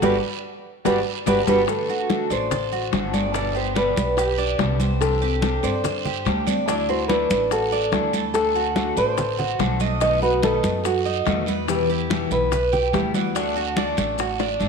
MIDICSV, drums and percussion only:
0, 0, Header, 1, 2, 480
1, 0, Start_track
1, 0, Tempo, 416378
1, 33, Time_signature, 4, 2, 24, 8
1, 16930, End_track
2, 0, Start_track
2, 0, Title_t, "Drums"
2, 25, Note_on_c, 9, 61, 98
2, 28, Note_on_c, 9, 74, 99
2, 31, Note_on_c, 9, 63, 97
2, 31, Note_on_c, 9, 70, 99
2, 140, Note_off_c, 9, 61, 0
2, 144, Note_off_c, 9, 74, 0
2, 146, Note_off_c, 9, 63, 0
2, 146, Note_off_c, 9, 70, 0
2, 981, Note_on_c, 9, 61, 99
2, 982, Note_on_c, 9, 74, 98
2, 988, Note_on_c, 9, 70, 95
2, 992, Note_on_c, 9, 63, 88
2, 1096, Note_off_c, 9, 61, 0
2, 1098, Note_off_c, 9, 74, 0
2, 1103, Note_off_c, 9, 70, 0
2, 1107, Note_off_c, 9, 63, 0
2, 1456, Note_on_c, 9, 74, 92
2, 1463, Note_on_c, 9, 61, 96
2, 1463, Note_on_c, 9, 63, 94
2, 1463, Note_on_c, 9, 70, 97
2, 1571, Note_off_c, 9, 74, 0
2, 1578, Note_off_c, 9, 61, 0
2, 1579, Note_off_c, 9, 63, 0
2, 1579, Note_off_c, 9, 70, 0
2, 1699, Note_on_c, 9, 61, 99
2, 1700, Note_on_c, 9, 74, 92
2, 1702, Note_on_c, 9, 63, 91
2, 1702, Note_on_c, 9, 70, 93
2, 1814, Note_off_c, 9, 61, 0
2, 1816, Note_off_c, 9, 74, 0
2, 1817, Note_off_c, 9, 63, 0
2, 1817, Note_off_c, 9, 70, 0
2, 1935, Note_on_c, 9, 60, 74
2, 1936, Note_on_c, 9, 74, 69
2, 1940, Note_on_c, 9, 63, 34
2, 1944, Note_on_c, 9, 70, 84
2, 2050, Note_off_c, 9, 60, 0
2, 2051, Note_off_c, 9, 74, 0
2, 2056, Note_off_c, 9, 63, 0
2, 2059, Note_off_c, 9, 70, 0
2, 2176, Note_on_c, 9, 63, 34
2, 2179, Note_on_c, 9, 60, 34
2, 2184, Note_on_c, 9, 70, 28
2, 2292, Note_off_c, 9, 63, 0
2, 2295, Note_off_c, 9, 60, 0
2, 2299, Note_off_c, 9, 70, 0
2, 2415, Note_on_c, 9, 73, 73
2, 2419, Note_on_c, 9, 60, 61
2, 2422, Note_on_c, 9, 63, 93
2, 2425, Note_on_c, 9, 70, 31
2, 2531, Note_off_c, 9, 73, 0
2, 2534, Note_off_c, 9, 60, 0
2, 2537, Note_off_c, 9, 63, 0
2, 2540, Note_off_c, 9, 70, 0
2, 2657, Note_on_c, 9, 73, 70
2, 2658, Note_on_c, 9, 63, 34
2, 2663, Note_on_c, 9, 70, 66
2, 2772, Note_off_c, 9, 73, 0
2, 2773, Note_off_c, 9, 63, 0
2, 2779, Note_off_c, 9, 70, 0
2, 2896, Note_on_c, 9, 74, 70
2, 2898, Note_on_c, 9, 60, 69
2, 2899, Note_on_c, 9, 70, 84
2, 2902, Note_on_c, 9, 63, 33
2, 2902, Note_on_c, 9, 64, 84
2, 3011, Note_off_c, 9, 74, 0
2, 3013, Note_off_c, 9, 60, 0
2, 3014, Note_off_c, 9, 70, 0
2, 3017, Note_off_c, 9, 63, 0
2, 3017, Note_off_c, 9, 64, 0
2, 3139, Note_on_c, 9, 60, 32
2, 3139, Note_on_c, 9, 63, 34
2, 3140, Note_on_c, 9, 70, 31
2, 3254, Note_off_c, 9, 60, 0
2, 3254, Note_off_c, 9, 63, 0
2, 3256, Note_off_c, 9, 70, 0
2, 3374, Note_on_c, 9, 73, 67
2, 3376, Note_on_c, 9, 60, 70
2, 3376, Note_on_c, 9, 61, 83
2, 3378, Note_on_c, 9, 70, 30
2, 3379, Note_on_c, 9, 63, 86
2, 3490, Note_off_c, 9, 73, 0
2, 3491, Note_off_c, 9, 60, 0
2, 3491, Note_off_c, 9, 61, 0
2, 3494, Note_off_c, 9, 70, 0
2, 3495, Note_off_c, 9, 63, 0
2, 3617, Note_on_c, 9, 60, 35
2, 3617, Note_on_c, 9, 73, 72
2, 3618, Note_on_c, 9, 63, 78
2, 3619, Note_on_c, 9, 70, 68
2, 3732, Note_off_c, 9, 60, 0
2, 3732, Note_off_c, 9, 73, 0
2, 3733, Note_off_c, 9, 63, 0
2, 3734, Note_off_c, 9, 70, 0
2, 3851, Note_on_c, 9, 74, 70
2, 3853, Note_on_c, 9, 63, 35
2, 3856, Note_on_c, 9, 60, 67
2, 3863, Note_on_c, 9, 70, 91
2, 3966, Note_off_c, 9, 74, 0
2, 3969, Note_off_c, 9, 63, 0
2, 3972, Note_off_c, 9, 60, 0
2, 3979, Note_off_c, 9, 70, 0
2, 4096, Note_on_c, 9, 63, 34
2, 4103, Note_on_c, 9, 70, 29
2, 4211, Note_off_c, 9, 63, 0
2, 4218, Note_off_c, 9, 70, 0
2, 4327, Note_on_c, 9, 73, 74
2, 4337, Note_on_c, 9, 60, 60
2, 4339, Note_on_c, 9, 63, 92
2, 4342, Note_on_c, 9, 70, 30
2, 4442, Note_off_c, 9, 73, 0
2, 4452, Note_off_c, 9, 60, 0
2, 4454, Note_off_c, 9, 63, 0
2, 4457, Note_off_c, 9, 70, 0
2, 4569, Note_on_c, 9, 73, 66
2, 4579, Note_on_c, 9, 60, 34
2, 4581, Note_on_c, 9, 63, 93
2, 4582, Note_on_c, 9, 70, 73
2, 4684, Note_off_c, 9, 73, 0
2, 4694, Note_off_c, 9, 60, 0
2, 4697, Note_off_c, 9, 63, 0
2, 4698, Note_off_c, 9, 70, 0
2, 4806, Note_on_c, 9, 74, 73
2, 4818, Note_on_c, 9, 60, 70
2, 4822, Note_on_c, 9, 70, 85
2, 4823, Note_on_c, 9, 63, 33
2, 4921, Note_off_c, 9, 74, 0
2, 4933, Note_off_c, 9, 60, 0
2, 4937, Note_off_c, 9, 70, 0
2, 4938, Note_off_c, 9, 63, 0
2, 5054, Note_on_c, 9, 63, 33
2, 5056, Note_on_c, 9, 60, 34
2, 5058, Note_on_c, 9, 70, 30
2, 5169, Note_off_c, 9, 63, 0
2, 5171, Note_off_c, 9, 60, 0
2, 5174, Note_off_c, 9, 70, 0
2, 5290, Note_on_c, 9, 63, 82
2, 5291, Note_on_c, 9, 73, 66
2, 5294, Note_on_c, 9, 60, 73
2, 5294, Note_on_c, 9, 61, 88
2, 5304, Note_on_c, 9, 70, 32
2, 5405, Note_off_c, 9, 63, 0
2, 5406, Note_off_c, 9, 73, 0
2, 5409, Note_off_c, 9, 60, 0
2, 5409, Note_off_c, 9, 61, 0
2, 5419, Note_off_c, 9, 70, 0
2, 5530, Note_on_c, 9, 63, 78
2, 5536, Note_on_c, 9, 73, 73
2, 5538, Note_on_c, 9, 70, 67
2, 5540, Note_on_c, 9, 60, 36
2, 5645, Note_off_c, 9, 63, 0
2, 5652, Note_off_c, 9, 73, 0
2, 5653, Note_off_c, 9, 70, 0
2, 5655, Note_off_c, 9, 60, 0
2, 5772, Note_on_c, 9, 74, 66
2, 5776, Note_on_c, 9, 63, 35
2, 5781, Note_on_c, 9, 60, 73
2, 5783, Note_on_c, 9, 70, 87
2, 5887, Note_off_c, 9, 74, 0
2, 5891, Note_off_c, 9, 63, 0
2, 5896, Note_off_c, 9, 60, 0
2, 5898, Note_off_c, 9, 70, 0
2, 6012, Note_on_c, 9, 63, 35
2, 6020, Note_on_c, 9, 70, 27
2, 6025, Note_on_c, 9, 60, 35
2, 6127, Note_off_c, 9, 63, 0
2, 6136, Note_off_c, 9, 70, 0
2, 6140, Note_off_c, 9, 60, 0
2, 6251, Note_on_c, 9, 73, 70
2, 6252, Note_on_c, 9, 63, 97
2, 6259, Note_on_c, 9, 70, 31
2, 6261, Note_on_c, 9, 60, 59
2, 6366, Note_off_c, 9, 73, 0
2, 6367, Note_off_c, 9, 63, 0
2, 6374, Note_off_c, 9, 70, 0
2, 6377, Note_off_c, 9, 60, 0
2, 6490, Note_on_c, 9, 73, 70
2, 6497, Note_on_c, 9, 63, 34
2, 6500, Note_on_c, 9, 70, 73
2, 6605, Note_off_c, 9, 73, 0
2, 6612, Note_off_c, 9, 63, 0
2, 6615, Note_off_c, 9, 70, 0
2, 6730, Note_on_c, 9, 74, 70
2, 6735, Note_on_c, 9, 63, 35
2, 6735, Note_on_c, 9, 64, 82
2, 6738, Note_on_c, 9, 70, 87
2, 6742, Note_on_c, 9, 60, 67
2, 6845, Note_off_c, 9, 74, 0
2, 6850, Note_off_c, 9, 63, 0
2, 6850, Note_off_c, 9, 64, 0
2, 6853, Note_off_c, 9, 70, 0
2, 6858, Note_off_c, 9, 60, 0
2, 6979, Note_on_c, 9, 63, 34
2, 6979, Note_on_c, 9, 64, 72
2, 6981, Note_on_c, 9, 70, 30
2, 6989, Note_on_c, 9, 60, 34
2, 7094, Note_off_c, 9, 63, 0
2, 7094, Note_off_c, 9, 64, 0
2, 7097, Note_off_c, 9, 70, 0
2, 7105, Note_off_c, 9, 60, 0
2, 7208, Note_on_c, 9, 73, 69
2, 7219, Note_on_c, 9, 63, 81
2, 7223, Note_on_c, 9, 60, 70
2, 7223, Note_on_c, 9, 61, 85
2, 7223, Note_on_c, 9, 70, 32
2, 7323, Note_off_c, 9, 73, 0
2, 7334, Note_off_c, 9, 63, 0
2, 7338, Note_off_c, 9, 60, 0
2, 7338, Note_off_c, 9, 61, 0
2, 7339, Note_off_c, 9, 70, 0
2, 7454, Note_on_c, 9, 73, 77
2, 7462, Note_on_c, 9, 63, 81
2, 7464, Note_on_c, 9, 60, 35
2, 7465, Note_on_c, 9, 70, 70
2, 7570, Note_off_c, 9, 73, 0
2, 7577, Note_off_c, 9, 63, 0
2, 7580, Note_off_c, 9, 60, 0
2, 7580, Note_off_c, 9, 70, 0
2, 7704, Note_on_c, 9, 63, 36
2, 7704, Note_on_c, 9, 74, 68
2, 7705, Note_on_c, 9, 70, 90
2, 7707, Note_on_c, 9, 60, 71
2, 7819, Note_off_c, 9, 74, 0
2, 7820, Note_off_c, 9, 63, 0
2, 7820, Note_off_c, 9, 70, 0
2, 7822, Note_off_c, 9, 60, 0
2, 7943, Note_on_c, 9, 63, 35
2, 7949, Note_on_c, 9, 70, 29
2, 8058, Note_off_c, 9, 63, 0
2, 8064, Note_off_c, 9, 70, 0
2, 8177, Note_on_c, 9, 73, 72
2, 8179, Note_on_c, 9, 63, 100
2, 8187, Note_on_c, 9, 70, 29
2, 8191, Note_on_c, 9, 60, 61
2, 8292, Note_off_c, 9, 73, 0
2, 8295, Note_off_c, 9, 63, 0
2, 8302, Note_off_c, 9, 70, 0
2, 8306, Note_off_c, 9, 60, 0
2, 8419, Note_on_c, 9, 70, 72
2, 8422, Note_on_c, 9, 73, 72
2, 8424, Note_on_c, 9, 63, 98
2, 8428, Note_on_c, 9, 60, 33
2, 8534, Note_off_c, 9, 70, 0
2, 8537, Note_off_c, 9, 73, 0
2, 8539, Note_off_c, 9, 63, 0
2, 8544, Note_off_c, 9, 60, 0
2, 8658, Note_on_c, 9, 63, 32
2, 8660, Note_on_c, 9, 60, 70
2, 8662, Note_on_c, 9, 70, 86
2, 8664, Note_on_c, 9, 74, 72
2, 8773, Note_off_c, 9, 63, 0
2, 8775, Note_off_c, 9, 60, 0
2, 8778, Note_off_c, 9, 70, 0
2, 8780, Note_off_c, 9, 74, 0
2, 8896, Note_on_c, 9, 63, 34
2, 8903, Note_on_c, 9, 70, 31
2, 8904, Note_on_c, 9, 60, 34
2, 9012, Note_off_c, 9, 63, 0
2, 9018, Note_off_c, 9, 70, 0
2, 9019, Note_off_c, 9, 60, 0
2, 9131, Note_on_c, 9, 63, 82
2, 9138, Note_on_c, 9, 60, 76
2, 9138, Note_on_c, 9, 61, 86
2, 9139, Note_on_c, 9, 73, 69
2, 9147, Note_on_c, 9, 70, 31
2, 9246, Note_off_c, 9, 63, 0
2, 9253, Note_off_c, 9, 60, 0
2, 9253, Note_off_c, 9, 61, 0
2, 9254, Note_off_c, 9, 73, 0
2, 9263, Note_off_c, 9, 70, 0
2, 9378, Note_on_c, 9, 63, 73
2, 9378, Note_on_c, 9, 73, 68
2, 9379, Note_on_c, 9, 70, 68
2, 9383, Note_on_c, 9, 60, 35
2, 9493, Note_off_c, 9, 63, 0
2, 9493, Note_off_c, 9, 73, 0
2, 9494, Note_off_c, 9, 70, 0
2, 9498, Note_off_c, 9, 60, 0
2, 9614, Note_on_c, 9, 74, 67
2, 9617, Note_on_c, 9, 70, 86
2, 9625, Note_on_c, 9, 63, 34
2, 9629, Note_on_c, 9, 60, 70
2, 9729, Note_off_c, 9, 74, 0
2, 9732, Note_off_c, 9, 70, 0
2, 9740, Note_off_c, 9, 63, 0
2, 9744, Note_off_c, 9, 60, 0
2, 9855, Note_on_c, 9, 63, 33
2, 9864, Note_on_c, 9, 70, 28
2, 9868, Note_on_c, 9, 60, 35
2, 9970, Note_off_c, 9, 63, 0
2, 9979, Note_off_c, 9, 70, 0
2, 9983, Note_off_c, 9, 60, 0
2, 10097, Note_on_c, 9, 63, 95
2, 10102, Note_on_c, 9, 73, 72
2, 10103, Note_on_c, 9, 60, 62
2, 10103, Note_on_c, 9, 70, 30
2, 10212, Note_off_c, 9, 63, 0
2, 10218, Note_off_c, 9, 60, 0
2, 10218, Note_off_c, 9, 70, 0
2, 10218, Note_off_c, 9, 73, 0
2, 10336, Note_on_c, 9, 73, 68
2, 10341, Note_on_c, 9, 70, 68
2, 10345, Note_on_c, 9, 63, 35
2, 10451, Note_off_c, 9, 73, 0
2, 10456, Note_off_c, 9, 70, 0
2, 10460, Note_off_c, 9, 63, 0
2, 10579, Note_on_c, 9, 60, 73
2, 10579, Note_on_c, 9, 70, 89
2, 10582, Note_on_c, 9, 74, 68
2, 10590, Note_on_c, 9, 63, 34
2, 10590, Note_on_c, 9, 64, 84
2, 10695, Note_off_c, 9, 60, 0
2, 10695, Note_off_c, 9, 70, 0
2, 10698, Note_off_c, 9, 74, 0
2, 10705, Note_off_c, 9, 63, 0
2, 10705, Note_off_c, 9, 64, 0
2, 10819, Note_on_c, 9, 70, 30
2, 10824, Note_on_c, 9, 60, 33
2, 10830, Note_on_c, 9, 63, 34
2, 10830, Note_on_c, 9, 64, 73
2, 10935, Note_off_c, 9, 70, 0
2, 10940, Note_off_c, 9, 60, 0
2, 10946, Note_off_c, 9, 63, 0
2, 10946, Note_off_c, 9, 64, 0
2, 11059, Note_on_c, 9, 73, 73
2, 11060, Note_on_c, 9, 70, 31
2, 11063, Note_on_c, 9, 63, 86
2, 11065, Note_on_c, 9, 60, 73
2, 11065, Note_on_c, 9, 61, 89
2, 11175, Note_off_c, 9, 70, 0
2, 11175, Note_off_c, 9, 73, 0
2, 11178, Note_off_c, 9, 63, 0
2, 11181, Note_off_c, 9, 60, 0
2, 11181, Note_off_c, 9, 61, 0
2, 11294, Note_on_c, 9, 70, 70
2, 11297, Note_on_c, 9, 73, 72
2, 11304, Note_on_c, 9, 60, 33
2, 11304, Note_on_c, 9, 63, 76
2, 11409, Note_off_c, 9, 70, 0
2, 11412, Note_off_c, 9, 73, 0
2, 11419, Note_off_c, 9, 60, 0
2, 11420, Note_off_c, 9, 63, 0
2, 11532, Note_on_c, 9, 74, 75
2, 11539, Note_on_c, 9, 70, 88
2, 11544, Note_on_c, 9, 60, 70
2, 11554, Note_on_c, 9, 63, 35
2, 11647, Note_off_c, 9, 74, 0
2, 11654, Note_off_c, 9, 70, 0
2, 11659, Note_off_c, 9, 60, 0
2, 11669, Note_off_c, 9, 63, 0
2, 11790, Note_on_c, 9, 70, 29
2, 11795, Note_on_c, 9, 63, 34
2, 11906, Note_off_c, 9, 70, 0
2, 11910, Note_off_c, 9, 63, 0
2, 12018, Note_on_c, 9, 73, 74
2, 12027, Note_on_c, 9, 63, 100
2, 12029, Note_on_c, 9, 60, 61
2, 12034, Note_on_c, 9, 70, 30
2, 12133, Note_off_c, 9, 73, 0
2, 12142, Note_off_c, 9, 63, 0
2, 12144, Note_off_c, 9, 60, 0
2, 12150, Note_off_c, 9, 70, 0
2, 12254, Note_on_c, 9, 73, 68
2, 12263, Note_on_c, 9, 63, 95
2, 12270, Note_on_c, 9, 70, 67
2, 12272, Note_on_c, 9, 60, 35
2, 12369, Note_off_c, 9, 73, 0
2, 12379, Note_off_c, 9, 63, 0
2, 12386, Note_off_c, 9, 70, 0
2, 12387, Note_off_c, 9, 60, 0
2, 12492, Note_on_c, 9, 74, 68
2, 12507, Note_on_c, 9, 70, 87
2, 12510, Note_on_c, 9, 60, 71
2, 12514, Note_on_c, 9, 63, 34
2, 12607, Note_off_c, 9, 74, 0
2, 12622, Note_off_c, 9, 70, 0
2, 12625, Note_off_c, 9, 60, 0
2, 12630, Note_off_c, 9, 63, 0
2, 12752, Note_on_c, 9, 60, 34
2, 12752, Note_on_c, 9, 63, 34
2, 12752, Note_on_c, 9, 70, 31
2, 12867, Note_off_c, 9, 60, 0
2, 12867, Note_off_c, 9, 63, 0
2, 12868, Note_off_c, 9, 70, 0
2, 12975, Note_on_c, 9, 73, 69
2, 12987, Note_on_c, 9, 60, 71
2, 12987, Note_on_c, 9, 61, 84
2, 12992, Note_on_c, 9, 70, 32
2, 12993, Note_on_c, 9, 63, 82
2, 13090, Note_off_c, 9, 73, 0
2, 13102, Note_off_c, 9, 60, 0
2, 13102, Note_off_c, 9, 61, 0
2, 13107, Note_off_c, 9, 70, 0
2, 13108, Note_off_c, 9, 63, 0
2, 13214, Note_on_c, 9, 73, 72
2, 13228, Note_on_c, 9, 60, 36
2, 13233, Note_on_c, 9, 70, 68
2, 13239, Note_on_c, 9, 63, 74
2, 13329, Note_off_c, 9, 73, 0
2, 13343, Note_off_c, 9, 60, 0
2, 13348, Note_off_c, 9, 70, 0
2, 13354, Note_off_c, 9, 63, 0
2, 13464, Note_on_c, 9, 74, 69
2, 13469, Note_on_c, 9, 60, 69
2, 13473, Note_on_c, 9, 70, 89
2, 13485, Note_on_c, 9, 63, 35
2, 13580, Note_off_c, 9, 74, 0
2, 13584, Note_off_c, 9, 60, 0
2, 13588, Note_off_c, 9, 70, 0
2, 13600, Note_off_c, 9, 63, 0
2, 13712, Note_on_c, 9, 60, 35
2, 13716, Note_on_c, 9, 70, 28
2, 13725, Note_on_c, 9, 63, 33
2, 13827, Note_off_c, 9, 60, 0
2, 13831, Note_off_c, 9, 70, 0
2, 13840, Note_off_c, 9, 63, 0
2, 13949, Note_on_c, 9, 73, 69
2, 13953, Note_on_c, 9, 60, 58
2, 13954, Note_on_c, 9, 70, 31
2, 13959, Note_on_c, 9, 63, 98
2, 14065, Note_off_c, 9, 73, 0
2, 14068, Note_off_c, 9, 60, 0
2, 14069, Note_off_c, 9, 70, 0
2, 14075, Note_off_c, 9, 63, 0
2, 14190, Note_on_c, 9, 73, 72
2, 14192, Note_on_c, 9, 70, 74
2, 14196, Note_on_c, 9, 63, 34
2, 14306, Note_off_c, 9, 73, 0
2, 14307, Note_off_c, 9, 70, 0
2, 14311, Note_off_c, 9, 63, 0
2, 14427, Note_on_c, 9, 74, 73
2, 14432, Note_on_c, 9, 60, 66
2, 14435, Note_on_c, 9, 70, 89
2, 14437, Note_on_c, 9, 63, 35
2, 14437, Note_on_c, 9, 64, 82
2, 14542, Note_off_c, 9, 74, 0
2, 14548, Note_off_c, 9, 60, 0
2, 14551, Note_off_c, 9, 70, 0
2, 14552, Note_off_c, 9, 63, 0
2, 14552, Note_off_c, 9, 64, 0
2, 14677, Note_on_c, 9, 63, 33
2, 14677, Note_on_c, 9, 64, 70
2, 14679, Note_on_c, 9, 70, 32
2, 14681, Note_on_c, 9, 60, 34
2, 14792, Note_off_c, 9, 63, 0
2, 14792, Note_off_c, 9, 64, 0
2, 14795, Note_off_c, 9, 70, 0
2, 14796, Note_off_c, 9, 60, 0
2, 14909, Note_on_c, 9, 73, 68
2, 14912, Note_on_c, 9, 63, 80
2, 14919, Note_on_c, 9, 60, 71
2, 14919, Note_on_c, 9, 61, 87
2, 14921, Note_on_c, 9, 70, 31
2, 15024, Note_off_c, 9, 73, 0
2, 15028, Note_off_c, 9, 63, 0
2, 15034, Note_off_c, 9, 60, 0
2, 15034, Note_off_c, 9, 61, 0
2, 15036, Note_off_c, 9, 70, 0
2, 15151, Note_on_c, 9, 63, 80
2, 15154, Note_on_c, 9, 73, 73
2, 15157, Note_on_c, 9, 70, 73
2, 15164, Note_on_c, 9, 60, 35
2, 15266, Note_off_c, 9, 63, 0
2, 15269, Note_off_c, 9, 73, 0
2, 15272, Note_off_c, 9, 70, 0
2, 15280, Note_off_c, 9, 60, 0
2, 15389, Note_on_c, 9, 74, 68
2, 15390, Note_on_c, 9, 63, 33
2, 15400, Note_on_c, 9, 70, 88
2, 15402, Note_on_c, 9, 60, 72
2, 15504, Note_off_c, 9, 74, 0
2, 15505, Note_off_c, 9, 63, 0
2, 15515, Note_off_c, 9, 70, 0
2, 15517, Note_off_c, 9, 60, 0
2, 15628, Note_on_c, 9, 63, 35
2, 15636, Note_on_c, 9, 70, 29
2, 15744, Note_off_c, 9, 63, 0
2, 15751, Note_off_c, 9, 70, 0
2, 15869, Note_on_c, 9, 63, 96
2, 15869, Note_on_c, 9, 73, 70
2, 15878, Note_on_c, 9, 70, 30
2, 15885, Note_on_c, 9, 60, 63
2, 15984, Note_off_c, 9, 63, 0
2, 15984, Note_off_c, 9, 73, 0
2, 15993, Note_off_c, 9, 70, 0
2, 16000, Note_off_c, 9, 60, 0
2, 16106, Note_on_c, 9, 73, 68
2, 16113, Note_on_c, 9, 70, 75
2, 16116, Note_on_c, 9, 63, 92
2, 16125, Note_on_c, 9, 60, 36
2, 16221, Note_off_c, 9, 73, 0
2, 16228, Note_off_c, 9, 70, 0
2, 16231, Note_off_c, 9, 63, 0
2, 16240, Note_off_c, 9, 60, 0
2, 16345, Note_on_c, 9, 74, 73
2, 16352, Note_on_c, 9, 70, 83
2, 16356, Note_on_c, 9, 63, 33
2, 16368, Note_on_c, 9, 60, 71
2, 16460, Note_off_c, 9, 74, 0
2, 16467, Note_off_c, 9, 70, 0
2, 16471, Note_off_c, 9, 63, 0
2, 16483, Note_off_c, 9, 60, 0
2, 16594, Note_on_c, 9, 63, 35
2, 16594, Note_on_c, 9, 70, 30
2, 16598, Note_on_c, 9, 60, 89
2, 16709, Note_off_c, 9, 63, 0
2, 16710, Note_off_c, 9, 70, 0
2, 16714, Note_off_c, 9, 60, 0
2, 16828, Note_on_c, 9, 73, 69
2, 16836, Note_on_c, 9, 63, 81
2, 16837, Note_on_c, 9, 70, 32
2, 16930, Note_off_c, 9, 63, 0
2, 16930, Note_off_c, 9, 70, 0
2, 16930, Note_off_c, 9, 73, 0
2, 16930, End_track
0, 0, End_of_file